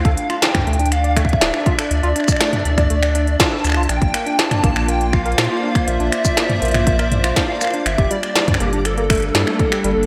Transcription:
Already playing: analog synth pad D4 C5, soft synth lead F5
0.05 sub bass D2, tine electric piano A4, kick, closed hi-hat
0.17 closed hi-hat
0.30 tine electric piano F4, finger snap, closed hi-hat
0.42 tine electric piano D4, soft synth lead G5, snare, closed hi-hat
0.55 finger snap, kick, closed hi-hat, mid tom
0.67 sub bass D2, tine electric piano A3, closed hi-hat
0.71 analog synth pad D5, closed hi-hat
0.79 tine electric piano D4, closed hi-hat
0.86 closed hi-hat
0.91 analog synth pad E5, soft synth lead F5, finger snap, closed hi-hat
1.04 tine electric piano D5, closed hi-hat
1.16 tine electric piano A3, soft synth lead E5, finger snap, kick, closed hi-hat
1.25 kick
1.29 closed hi-hat
1.33 kick
1.41 sub bass D1, tine electric piano D4, snare, closed hi-hat
1.54 finger snap
1.66 tine electric piano F4, kick, closed hi-hat
1.78 tine electric piano A4, finger snap, closed hi-hat
1.91 sub bass D2, soft synth lead D5, closed hi-hat
2.03 sub bass D2, tine electric piano F4, closed hi-hat
2.16 tine electric piano D4, finger snap, closed hi-hat
2.20 finger snap
2.24 finger snap
2.28 finger snap, kick, closed hi-hat, shaker
2.32 finger snap
2.36 finger snap
2.40 tine electric piano A3, finger snap, snare, closed hi-hat
2.53 tine electric piano D4, closed hi-hat, mid tom
2.65 sub bass D2, closed hi-hat
2.78 tine electric piano D5, finger snap, kick, closed hi-hat, mid tom
2.90 tine electric piano A3, closed hi-hat
3.03 finger snap, closed hi-hat
3.15 tine electric piano D4, closed hi-hat
3.27 closed hi-hat
3.40 tine electric piano F4, soft synth lead A5, finger snap, kick, snare, closed hi-hat
3.52 tine electric piano A4
3.64 sub bass D2, finger snap, closed hi-hat, shaker
3.67 finger snap
3.69 finger snap
3.72 finger snap
3.74 sub bass C2, tine electric piano F4, finger snap
3.83 closed hi-hat
3.89 sub bass A#1, synth texture A#3 D5, analog synth pad A#3, tine electric piano D4, soft synth lead G5, finger snap, closed hi-hat
4.02 sub bass A#1, kick, closed hi-hat
4.11 tine electric piano A#3, analog synth pad F4, finger snap, closed hi-hat
4.26 tine electric piano D4, closed hi-hat
4.39 soft synth lead A5, snare, closed hi-hat
4.51 tine electric piano D5, finger snap, closed hi-hat, mid tom
4.64 sub bass A#1, tine electric piano A#3, kick, closed hi-hat
4.76 finger snap
4.88 tine electric piano A#3, soft synth lead G5, closed hi-hat
4.98 analog synth pad D5, closed hi-hat
5.13 tine electric piano F4, analog synth pad C5, soft synth lead F5, finger snap, kick
5.26 tine electric piano A#4, closed hi-hat
5.32 closed hi-hat
5.38 sub bass A#2, finger snap, snare, closed hi-hat
5.44 closed hi-hat
5.50 tine electric piano F4
5.63 tine electric piano D4
5.75 finger snap, kick, closed hi-hat
5.88 sub bass A#1, tine electric piano A#3, soft synth lead E5, closed hi-hat
6.00 sub bass A#1, tine electric piano D4, closed hi-hat
6.12 finger snap, closed hi-hat
6.25 tine electric piano D5, kick, closed hi-hat, shaker
6.37 tine electric piano A#3, finger snap, snare, closed hi-hat
6.50 closed hi-hat, mid tom
6.62 sub bass A#1, tine electric piano A#3, closed hi-hat
6.65 closed hi-hat
6.68 closed hi-hat
6.74 finger snap, closed hi-hat, mid tom
6.87 tine electric piano F4, kick, closed hi-hat
6.99 tine electric piano A#4, finger snap, closed hi-hat
7.12 closed hi-hat, mid tom
7.24 tine electric piano F4, finger snap, closed hi-hat
7.36 tine electric piano D4, soft synth lead F5, kick, snare, closed hi-hat
7.61 tine electric piano A#3, finger snap, closed hi-hat, shaker
7.64 finger snap
7.67 finger snap
7.70 tine electric piano D4, finger snap, closed hi-hat
7.86 sub bass G1, analog synth pad G3, soft synth lead E5, finger snap, closed hi-hat
7.98 sub bass G1, tine electric piano G4, kick, closed hi-hat
8.11 tine electric piano G3, soft synth lead D5, closed hi-hat
8.23 analog synth pad D4, finger snap, closed hi-hat
8.35 tine electric piano G3, analog synth pad A4, snare, closed hi-hat
8.48 kick, closed hi-hat, mid tom
8.54 finger snap
8.60 sub bass G1, tine electric piano A#3, soft synth lead G4, closed hi-hat
8.73 tine electric piano D4, closed hi-hat
8.85 soft synth lead A4, finger snap, closed hi-hat
8.97 tine electric piano A#3, closed hi-hat
9.10 tine electric piano A3, analog synth pad A#3, finger snap, kick, closed hi-hat
9.12 closed hi-hat
9.15 closed hi-hat
9.17 closed hi-hat
9.20 closed hi-hat
9.22 closed hi-hat
9.35 sub bass G2, tine electric piano G3, snare, closed hi-hat
9.47 tine electric piano A3, finger snap
9.59 kick, closed hi-hat
9.72 tine electric piano G4, finger snap, closed hi-hat
9.84 sub bass G1, tine electric piano G3, closed hi-hat
9.97 sub bass G1
10.03 closed hi-hat

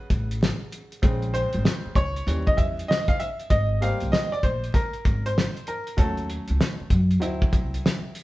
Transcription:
Already playing: upright piano C#3 F#3 B3 B4
0.10 upright bass A1, kick, closed hi-hat
0.31 closed hi-hat
0.43 snare
0.72 closed hi-hat
0.92 closed hi-hat
1.02 upright bass A#1, upright piano C#3 G#3 C4, kick, closed hi-hat
1.22 closed hi-hat
1.34 upright piano C5, closed hi-hat
1.53 upright bass G#1, closed hi-hat
1.65 snare
1.85 muted upright bass stroke
1.95 upright bass C#2, upright piano C#5, kick, closed hi-hat
2.16 closed hi-hat
2.27 upright bass D#2, upright piano E3 G3 C#4, closed hi-hat
2.47 upright piano D#5, kick
2.57 upright bass E2, upright piano E5, kick, closed hi-hat
2.79 closed hi-hat
2.88 upright piano D#5, snare
3.08 upright piano F5, kick, closed hi-hat
3.20 upright piano E5, closed hi-hat
3.40 closed hi-hat
3.50 upright bass G#1, upright piano D#5, kick, closed hi-hat
3.81 upright piano G3 A#3 C4 F5, closed hi-hat
4.00 upright bass C2, closed hi-hat
4.12 upright piano D#5, snare
4.32 upright piano D5, closed hi-hat
4.43 upright bass A#1, upright piano C5, kick, closed hi-hat
4.64 closed hi-hat
4.74 upright piano A#4, kick, closed hi-hat
4.93 closed hi-hat
5.05 upright bass G#1, kick, closed hi-hat
5.26 upright piano C5, closed hi-hat
5.38 snare
5.57 closed hi-hat
5.67 upright piano A#4, closed hi-hat
5.87 closed hi-hat
5.97 upright bass D#2, upright piano F#3 A3 C#4 A4, kick, closed hi-hat
6.17 closed hi-hat
6.30 closed hi-hat
6.48 upright bass C#2, closed hi-hat
6.61 snare
6.80 muted upright bass stroke
6.90 upright bass F#2, kick, closed hi-hat
7.11 closed hi-hat
7.20 upright bass D2, upright piano F#3 C4 E4, closed hi-hat
7.42 kick
7.53 upright bass C2, kick, closed hi-hat
7.74 closed hi-hat
7.86 snare
8.15 closed hi-hat

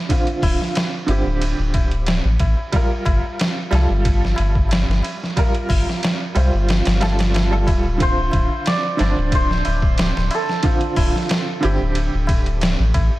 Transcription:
Already playing: upright piano D3 C4 D4
0.09 upright piano D3 C4 F4, kick, ride, tabla na
0.27 ride, tabla na
0.42 sub bass D1, kick, open hi-hat, tabla na
0.61 snare, tabla na
0.75 snare, ride, tabla na
1.06 sub bass G1, upright piano D3 C4 G4, ride, tabla na
1.26 sub bass D1, tabla na
1.41 ride, tabla na
1.58 sub bass D1
1.74 kick, ride, tabla na
1.91 ride, tabla na
2.06 snare, ride, tabla na
2.24 sub bass A1, tabla na
2.39 sub bass A1, kick, ride, tabla na
2.57 tabla na
2.72 upright piano G3 F4 A#4, kick, ride, tabla na
2.90 tabla na
3.05 sub bass G1, kick, ride, tabla na
3.23 tabla na
3.39 snare, ride, tabla na
3.71 sub bass C2, upright piano G3 F4, snare, ride, tabla na
3.75 upright piano A4
3.88 sub bass G1, tabla na
4.03 kick, ride, tabla na
4.25 snare
4.36 sub bass G1, ride, tabla na
4.54 kick, tabla na
4.69 snare, ride, tabla na
4.87 sub bass G1, snare, tabla na
5.03 ride, tabla na
5.20 snare, tabla na
5.36 upright piano G3 F4 A#4, kick, ride, tabla na
5.54 ride, tabla na
5.69 sub bass G1, kick, open hi-hat, tabla na
5.87 snare, tabla na
6.03 snare, ride, tabla na
6.35 sub bass C2, upright piano G3 F4 C5, ride, tabla na
6.53 sub bass G1, tabla na
6.68 snare, ride, tabla na
6.85 sub bass G1, snare, ride, tabla na
7.01 upright piano G3 F4 A4, snare, ride, tabla na
7.19 snare, ride, tabla na
7.34 snare, ride, tabla na
7.51 upright piano G3 F4 A4, tabla na
7.67 sub bass D1, kick, ride, tabla na
7.84 tabla na
7.98 upright piano D3 C4, kick, ride, tabla na
8.02 upright piano F4, santur C5
8.17 tabla na
8.31 sub bass D1, kick, ride, tabla na
8.49 tabla na
8.65 santur D5, snare, ride, tabla na
8.97 sub bass G1, upright piano D3 C4 D4, snare, ride, tabla na
9.16 sub bass D1, tabla na
9.32 santur C5, kick, ride, tabla na
9.51 snare
9.65 sub bass D1, ride, tabla na
9.82 kick, tabla na
9.98 snare, ride, tabla na
10.16 sub bass D1, snare, tabla na
10.31 santur A4, ride, tabla na
10.48 snare, tabla na
10.63 upright piano D3 C4 F4, kick, ride, tabla na
10.81 ride, tabla na
10.96 sub bass D1, kick, open hi-hat, tabla na
11.16 snare
11.29 snare, ride, tabla na
11.61 sub bass G1, upright piano D3 C4 G4, ride, tabla na
11.81 sub bass D1, tabla na
11.95 ride, tabla na
12.14 sub bass D1
12.27 kick, ride, tabla na
12.45 ride, tabla na
12.61 snare, ride, tabla na
12.79 sub bass A1, tabla na
12.94 sub bass A1, kick, ride, tabla na
13.11 tabla na

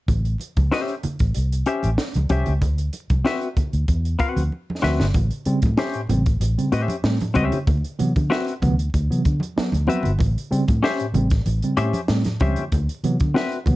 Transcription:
0.08 fingered electric bass A1, kick, closed hi-hat, muted conga, low conga
0.25 closed hi-hat
0.39 closed hi-hat, muted conga
0.57 fingered electric bass C#2, kick, closed hi-hat, high conga
0.71 clean electric guitar C#4 G4 C5 E5, snare
0.88 closed hi-hat
1.03 muted fingered electric bass stroke, closed hi-hat, low conga
1.19 fingered electric bass A1, kick, closed hi-hat
1.34 fingered electric bass C2, closed hi-hat
1.52 closed hi-hat
1.66 clean electric guitar C#4 G4 C5 E5, closed hi-hat
1.83 fingered electric bass A1, closed hi-hat, high conga
1.98 snare, muted conga
2.14 fingered electric bass C#2, closed hi-hat, high conga
2.29 fingered electric bass C2, clean electric guitar C#4 G4 C5 E5, kick, closed hi-hat, muted conga, high conga
2.46 fingered electric bass C#2, closed hi-hat, low conga
2.62 fingered electric bass D2, kick, closed hi-hat, low conga
2.78 closed hi-hat
2.93 closed hi-hat, muted conga
3.10 fingered electric bass C2, kick, closed hi-hat, high conga
3.25 clean electric guitar C4 F#4 B4 E5, snare, muted conga
3.41 closed hi-hat
3.57 muted fingered electric bass stroke, kick, closed hi-hat, muted conga, low conga
3.73 fingered electric bass D2, closed hi-hat
3.88 fingered electric bass E2, kick, closed hi-hat, muted conga
4.05 closed hi-hat
4.19 clean electric guitar C4 F#4 B4 F#5, kick, closed hi-hat, muted conga
4.36 fingered electric bass D2, closed hi-hat, high conga
4.52 muted conga
4.70 high conga
4.82 fingered electric bass D2, clean electric guitar C4 F#4 B4 E5, snare, high conga
5.00 fingered electric bass G1, snare, low conga
5.14 fingered electric bass A1, tine electric piano A2, kick, closed hi-hat, muted conga, low conga
5.31 closed hi-hat
5.46 tine electric piano C#3 G3 C4, muted fingered electric bass stroke, closed hi-hat
5.62 fingered electric bass A2, kick, closed hi-hat, high conga
5.78 tine electric piano G3 C4, clean electric guitar C#4 G4 C5 E5, snare, muted conga
5.93 tine electric piano A2, closed hi-hat
6.09 fingered electric bass A1, tine electric piano C#3 G3 C4, closed hi-hat, muted conga, low conga
6.26 kick, closed hi-hat
6.40 fingered electric bass A1, tine electric piano A2, closed hi-hat, muted conga
6.58 tine electric piano C#3 G3 C4, closed hi-hat
6.72 fingered electric bass A2, clean electric guitar C#4 G4 C5 E5, closed hi-hat, muted conga
6.88 closed hi-hat, high conga
7.04 fingered electric bass A2, tine electric piano G3 C4, snare, muted conga
7.20 tine electric piano A2, closed hi-hat, high conga
7.34 fingered electric bass C#2, tine electric piano G3 C4, clean electric guitar C#4 G4 C5 E5, kick, closed hi-hat, high conga
7.52 closed hi-hat, low conga
7.67 fingered electric bass D2, kick, closed hi-hat, muted conga, low conga
7.84 closed hi-hat
7.99 tine electric piano C3 E3 F#3 B3, muted fingered electric bass stroke, closed hi-hat
8.16 fingered electric bass D3, kick, closed hi-hat, high conga
8.30 tine electric piano F#3 B3, clean electric guitar C4 F#4 B4 E5, snare, muted conga
8.48 closed hi-hat
8.62 fingered electric bass D2, tine electric piano C3 E3 F#3 B3, kick, closed hi-hat, low conga
8.79 closed hi-hat
8.94 fingered electric bass D2, kick, closed hi-hat
9.10 tine electric piano C3 E3 F#3 B3, closed hi-hat
9.25 fingered electric bass D3, kick, closed hi-hat, muted conga
9.40 closed hi-hat, high conga
9.57 tine electric piano F#3 B3, muted fingered electric bass stroke, snare
9.72 fingered electric bass D2, closed hi-hat, high conga
9.87 tine electric piano F#3 B3, clean electric guitar C4 F#4 B4 E5, closed hi-hat, high conga
10.03 fingered electric bass G1, closed hi-hat, low conga
10.19 fingered electric bass A1, tine electric piano A2, kick, closed hi-hat, low conga
10.38 closed hi-hat
10.51 tine electric piano C#3 G3 C4, muted fingered electric bass stroke, closed hi-hat
10.68 fingered electric bass A2, kick, closed hi-hat, high conga
10.83 tine electric piano G3 C4, clean electric guitar C#4 G4 C5 E5, snare
11.00 tine electric piano A2, closed hi-hat
11.14 fingered electric bass A1, tine electric piano C#3 G3 C4, closed hi-hat, low conga
11.30 kick, snare, closed hi-hat
11.46 fingered electric bass A1, tine electric piano A2, closed hi-hat, muted conga
11.62 tine electric piano C#3 G3 C4, closed hi-hat
11.77 fingered electric bass A2, clean electric guitar C#4 G4 C5 E5, closed hi-hat, muted conga
11.93 closed hi-hat, high conga
12.08 fingered electric bass A2, tine electric piano G3 C4, snare, muted conga
12.24 tine electric piano A2, snare, closed hi-hat, high conga
12.40 fingered electric bass C#2, tine electric piano G3 C4, clean electric guitar C#4 G4 C5 E5, kick, closed hi-hat, muted conga, high conga
12.56 closed hi-hat, low conga
12.72 fingered electric bass D2, kick, closed hi-hat, low conga
12.89 closed hi-hat
13.04 tine electric piano C3 E3 F#3 B3, muted fingered electric bass stroke, closed hi-hat, muted conga
13.20 fingered electric bass D3, kick, closed hi-hat, high conga
13.34 tine electric piano F#3 B3, clean electric guitar C4 F#4 B4 E5, snare
13.52 closed hi-hat
13.66 fingered electric bass D2, tine electric piano C3 E3 F#3 B3, kick, closed hi-hat, muted conga, low conga

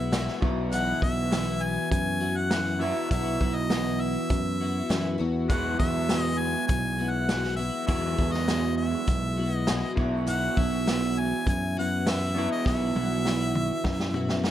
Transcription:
Already playing: picked electric bass B1, clean electric guitar E2 B2 E3 G#3 B3 F#4, twelve-string acoustic guitar B3 E4 F#4, harmonica E5
0.12 twelve-string acoustic guitar G#3 B3 E4 F#4, snare, closed hi-hat
0.28 snare
0.41 picked electric bass B1, clean electric guitar B2 E3 B3 E4 F#4, twelve-string acoustic guitar B3 E4 F#4, kick
0.72 twelve-string acoustic guitar B2 E3 B3 E4 F#4, harmonica F#5, closed hi-hat
1.01 picked electric bass B1, twelve-string acoustic guitar B3 E4 F#4, harmonica E5, kick
1.31 twelve-string acoustic guitar E3 B3 E4 F#4, snare, closed hi-hat
1.63 harmonica G#5
1.91 picked electric bass F#2, harmonica G#5, kick, closed hi-hat
2.20 twelve-string acoustic guitar B3 E4 F#4
2.37 harmonica F#5
2.51 twelve-string acoustic guitar E3 B3 E4 F#4, snare, closed hi-hat
2.79 clean electric guitar B2 E3 B3 E4 F#4, twelve-string acoustic guitar B3 E4 F#4, harmonica E5
3.11 picked electric bass B1, twelve-string acoustic guitar B2 E3 B3 E4 F#4, harmonica E5, kick, closed hi-hat
3.40 picked electric bass B1, twelve-string acoustic guitar B3 E4 F#4, kick
3.55 harmonica D#5
3.70 twelve-string acoustic guitar E3 B3 E4 F#4, snare, closed hi-hat
4.01 harmonica E5
4.30 picked electric bass F#2, kick, closed hi-hat
4.60 twelve-string acoustic guitar B3 E4 F#4
4.89 picked electric bass F#2, twelve-string acoustic guitar E3 B3 E4 F#4, snare, closed hi-hat
5.18 picked electric bass E2, twelve-string acoustic guitar B3 E4 F#4
5.48 clean electric guitar E2 B2 F#3 G#3 B3 F#4, picked electric bass E2, twelve-string acoustic guitar E3 G#3 B3 E4 F#4, harmonica F#5, kick, closed hi-hat
5.79 picked electric bass E2, twelve-string acoustic guitar B3 E4 F#4, harmonica E5, kick
6.09 twelve-string acoustic guitar G#3 B3 E4 F#4, snare, closed hi-hat
6.19 harmonica D#5
6.38 harmonica G#5
6.67 picked electric bass B1, harmonica G#5, kick, closed hi-hat
6.99 twelve-string acoustic guitar B3 E4 F#4
7.11 harmonica F#5
7.29 twelve-string acoustic guitar G#3 B3 E4 F#4, snare, closed hi-hat
7.44 snare
7.56 twelve-string acoustic guitar B3 E4 F#4, harmonica E5
7.86 clean electric guitar E2 B2 F#3 G#3 B3 F#4, picked electric bass E2, twelve-string acoustic guitar E3 G#3 B3 E4 F#4, harmonica E5, kick, closed hi-hat
8.17 picked electric bass E2, twelve-string acoustic guitar B3 E4 F#4, kick
8.32 harmonica D#5, snare
8.48 twelve-string acoustic guitar G#3 B3 E4 F#4, snare, closed hi-hat
8.77 harmonica E5
9.07 picked electric bass B1, kick, closed hi-hat
9.37 twelve-string acoustic guitar B3 E4 F#4
9.53 harmonica D#5
9.67 twelve-string acoustic guitar G#3 B3 E4 F#4, snare, closed hi-hat
9.96 picked electric bass B1, clean electric guitar B2 E3 B3 E4, twelve-string acoustic guitar E4 F#4, kick
10.00 twelve-string acoustic guitar B3, clean electric guitar F#4
10.27 twelve-string acoustic guitar B2 E3 B3 E4 F#4, harmonica F#5, closed hi-hat
10.57 picked electric bass B1, twelve-string acoustic guitar B3 E4 F#4, harmonica E5, kick
10.87 twelve-string acoustic guitar E3 B3 E4 F#4, snare, closed hi-hat
11.18 harmonica G#5
11.46 picked electric bass F#2, harmonica G#5, kick, closed hi-hat
11.77 twelve-string acoustic guitar B3 E4 F#4, harmonica F#5
12.06 twelve-string acoustic guitar E3 B3 E4 F#4, harmonica E5, snare, closed hi-hat
12.34 clean electric guitar B2 E3 B3 E4 F#4, twelve-string acoustic guitar E4 F#4
12.38 twelve-string acoustic guitar B3
12.52 harmonica D#5
12.66 picked electric bass B1, twelve-string acoustic guitar B2 E3 B3 E4 F#4, harmonica E5, kick, snare
12.95 picked electric bass B1, twelve-string acoustic guitar B3 E4 F#4, high tom
13.24 twelve-string acoustic guitar E3 B3 E4 F#4, snare
13.55 mid tom
13.84 picked electric bass F#2, kick, snare
13.99 snare
14.14 twelve-string acoustic guitar B3 E4 F#4, mid tom
14.29 snare
14.43 twelve-string acoustic guitar E3 B3 E4 F#4, snare

